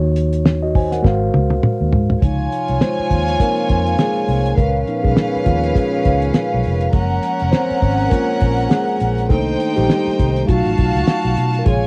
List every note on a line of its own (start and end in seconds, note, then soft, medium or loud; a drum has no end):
0.00 1.00 D#2 loud
0.00 1.00 D#3 medium
0.00 1.01 D#4 medium
0.00 0.44 F#4 medium
0.00 0.45 C#5 medium
0.16 closed hi-hat medium
0.33 closed hi-hat medium
0.45 snare loud
0.62 0.74 F#4 medium
0.62 0.74 D#5 medium
0.75 0.92 C5 medium
0.75 0.91 G#5 medium
0.75 kick medium
0.75 open hi-hat soft
0.92 1.03 A#4 soft
0.92 1.20 F#5 medium
0.92 snare soft
0.92 closed hi-hat medium
1.02 1.28 G#1 loud
1.02 2.18 G#3 medium
1.02 2.19 F#4 medium
1.02 2.20 A#4 medium
1.02 2.20 C5 medium
1.02 kick medium
1.02 snare medium
1.06 2.21 F5 medium
1.34 1.59 C#2 medium
1.34 high tom medium
1.50 high tom medium
1.63 muted fingered electric bass stroke soft
1.63 mid tom medium
1.81 1.90 D#2 medium
1.92 2.17 G#2 medium
1.92 floor tom medium
2.10 floor tom medium
2.22 2.46 C#2 medium
2.22 4.54 C3 soft
2.22 3.39 F3 soft
2.22 3.40 D#4 soft
2.22 4.54 F4 medium
2.22 4.54 C#5 medium
2.22 4.54 G#5 loud
2.22 kick loud
2.22 closed hi-hat medium
2.52 closed hi-hat medium
2.68 2.79 C2 medium
2.68 closed hi-hat medium
2.81 3.36 G#3 medium
2.81 3.36 C5 medium
2.81 snare medium
2.81 closed hi-hat medium
2.99 muted fingered electric bass stroke soft
3.11 3.35 D#2 medium
3.11 kick medium
3.11 closed hi-hat medium
3.27 snare soft
3.27 closed hi-hat soft
3.40 3.67 F3 soft
3.40 3.96 A#3 medium
3.40 3.67 C4 soft
3.40 3.67 D#4 soft
3.40 4.01 A#4 medium
3.40 kick medium
3.40 closed hi-hat medium
3.57 closed hi-hat soft
3.69 3.94 F2 medium
3.69 kick medium
3.69 closed hi-hat medium
3.86 closed hi-hat soft
3.98 4.54 G#3 medium
3.98 4.59 G#4 medium
3.98 snare loud
3.98 closed hi-hat medium
4.15 closed hi-hat soft
4.28 4.53 C2 medium
4.28 open hi-hat soft
4.46 closed hi-hat soft
4.57 4.82 C#2 medium
4.57 5.01 A#2 medium
4.57 6.90 C#4 medium
4.57 5.01 A#4 medium
4.57 6.90 B4 medium
4.57 6.90 F5 medium
4.57 kick loud
4.57 closed hi-hat medium
4.87 5.46 F3 medium
4.87 5.72 B3 soft
4.87 5.72 D#4 medium
4.87 closed hi-hat medium
5.03 5.15 B1 medium
5.03 5.44 G#3 medium
5.03 5.43 G#4 medium
5.03 kick medium
5.03 closed hi-hat soft
5.17 snare loud
5.17 closed hi-hat medium
5.36 muted fingered electric bass stroke soft
5.45 5.71 D#2 medium
5.45 5.74 F3 soft
5.45 5.76 F4 medium
5.45 kick medium
5.45 closed hi-hat medium
5.64 closed hi-hat soft
5.75 6.61 G#3 medium
5.75 6.60 G#4 medium
5.75 kick medium
5.75 closed hi-hat medium
6.05 6.30 C#2 medium
6.05 kick medium
6.05 closed hi-hat medium
6.22 closed hi-hat soft
6.34 snare loud
6.34 closed hi-hat medium
6.54 6.63 B1 medium
6.64 6.89 F1 medium
6.64 open hi-hat soft
6.81 closed hi-hat soft
6.93 7.18 F#1 medium
6.93 7.36 F3 medium
6.93 7.35 G#3 soft
6.93 7.35 A#3 soft
6.93 9.26 C#4 medium
6.93 9.26 A#4 medium
6.93 9.26 F#5 loud
6.93 kick loud
6.93 closed hi-hat medium
7.23 closed hi-hat medium
7.39 7.52 F1 medium
7.39 closed hi-hat soft
7.52 8.09 C4 medium
7.52 8.13 C5 loud
7.52 snare loud
7.52 closed hi-hat medium
7.70 muted fingered electric bass stroke soft
7.70 closed hi-hat soft
7.82 8.07 G#1 medium
7.82 kick medium
7.82 open hi-hat soft
7.99 closed hi-hat soft
8.10 8.38 G#3 medium
8.10 8.67 A#3 medium
8.10 8.39 F4 medium
8.10 8.66 A#4 medium
8.10 kick medium
8.10 closed hi-hat medium
8.40 8.66 A#1 medium
8.40 kick medium
8.40 closed hi-hat medium
8.58 closed hi-hat soft
8.70 9.27 G#3 medium
8.70 9.31 G#4 medium
8.70 snare loud
8.70 closed hi-hat medium
9.00 9.31 A#1 medium
9.00 closed hi-hat medium
9.18 closed hi-hat soft
9.29 9.55 C2 medium
9.29 10.18 D#3 medium
9.29 9.74 A3 medium
9.29 10.44 A#3 soft
9.29 10.45 D4 soft
9.29 10.46 D#4 medium
9.29 9.73 A4 medium
9.29 10.46 C5 medium
9.29 10.46 G5 medium
9.29 kick loud
9.29 closed hi-hat medium
9.47 closed hi-hat soft
9.60 closed hi-hat medium
9.76 9.88 A#1 medium
9.76 10.16 G3 medium
9.76 10.20 G4 medium
9.76 closed hi-hat soft
9.89 snare loud
9.89 closed hi-hat medium
10.07 muted fingered electric bass stroke soft
10.07 closed hi-hat soft
10.18 10.44 C2 medium
10.18 10.47 D#3 medium
10.18 10.47 D#4 medium
10.18 kick medium
10.18 closed hi-hat medium
10.36 closed hi-hat medium
10.47 10.63 B1 loud
10.47 11.33 F#3 medium
10.47 11.62 A3 soft
10.47 11.62 D#4 medium
10.47 11.62 F4 medium
10.47 11.32 F#4 medium
10.47 11.64 F#4 medium
10.47 11.64 F5 medium
10.47 11.64 A5 medium
10.47 kick medium
10.47 closed hi-hat medium
10.65 10.76 A1 medium
10.65 closed hi-hat soft
10.78 10.92 B1 medium
10.78 kick medium
10.78 closed hi-hat medium
10.95 11.05 C#2 medium
10.95 closed hi-hat soft
11.07 muted fingered electric bass stroke soft
11.07 snare loud
11.07 closed hi-hat medium
11.23 11.35 B1 medium
11.23 closed hi-hat soft
11.37 11.61 B2 medium
11.37 closed hi-hat medium
11.54 closed hi-hat soft
11.59 11.65 A#4 medium
11.65 11.87 A#1 medium
11.65 11.87 C3 soft
11.65 11.87 C#3 soft
11.65 11.87 G#3 medium
11.65 11.87 F4 medium
11.65 11.87 G#4 medium
11.65 11.87 C#5 medium
11.65 11.87 G#5 loud
11.65 kick loud
11.65 closed hi-hat medium